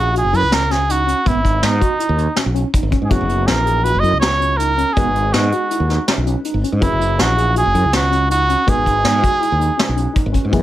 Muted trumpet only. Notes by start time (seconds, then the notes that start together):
Already playing: F#4
0.18 G#4
0.36 B4
0.54 A#4
0.71 G#4
0.91 F#4
1.28 E4
1.64 D#4
3.05 G#4
3.11 F#4
3.47 A#4
3.84 B4
4.00 D#5
4.20 C#5
4.57 A#4
4.93 G#4
5.33 F#4
6.82 E4
7.22 F#4
7.58 G#4
7.95 F#4
8.31 F#4
8.69 G#4